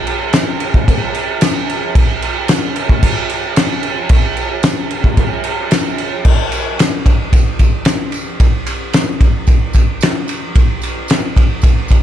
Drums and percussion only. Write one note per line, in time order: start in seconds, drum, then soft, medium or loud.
0.07 crash medium
0.33 snare loud
0.33 tambourine loud
0.33 crash medium
0.60 crash medium
0.74 kick loud
0.88 kick loud
0.88 crash medium
1.15 crash medium
1.41 snare loud
1.41 tambourine loud
1.41 crash loud
1.70 crash medium
1.95 kick loud
1.95 crash medium
2.22 crash medium
2.48 snare loud
2.48 tambourine loud
2.48 crash medium
2.76 crash medium
2.89 kick loud
3.03 kick loud
3.03 crash medium
3.30 crash medium
3.56 snare loud
3.56 tambourine medium
3.56 crash medium
3.83 crash medium
4.09 kick loud
4.09 crash medium
4.37 crash medium
4.63 snare loud
4.63 tambourine loud
4.63 crash medium
4.91 crash medium
5.04 kick loud
5.17 kick medium
5.17 crash medium
5.44 crash medium
5.71 snare loud
5.71 tambourine medium
5.71 crash medium
5.98 crash medium
6.25 kick loud
6.25 crash loud
6.25 tambourine soft
6.52 ride medium
6.52 tambourine medium
6.79 snare loud
6.79 ride loud
6.79 tambourine loud
7.06 kick medium
7.06 ride medium
7.06 tambourine soft
7.33 kick loud
7.33 ride loud
7.33 tambourine medium
7.59 kick medium
7.59 ride medium
7.59 tambourine medium
7.85 snare loud
7.85 ride loud
7.85 tambourine medium
8.12 ride medium
8.12 tambourine medium
8.40 kick loud
8.40 ride medium
8.40 tambourine soft
8.66 ride medium
8.66 tambourine medium
8.93 snare loud
8.93 ride medium
8.93 tambourine medium
9.21 kick medium
9.21 ride medium
9.21 tambourine soft
9.47 kick loud
9.47 ride medium
9.47 tambourine medium
9.73 kick medium
9.73 ride medium
9.73 tambourine medium
10.01 snare loud
10.01 ride loud
10.01 tambourine loud
10.28 ride medium
10.28 tambourine medium
10.55 kick loud
10.55 ride medium
10.55 tambourine soft
10.82 ride medium
10.82 tambourine medium
11.08 snare loud
11.08 ride loud
11.08 tambourine loud
11.36 kick medium
11.36 ride medium
11.36 tambourine soft
11.62 kick loud
11.62 ride loud
11.62 tambourine medium
11.88 kick medium
11.88 ride medium
11.88 tambourine medium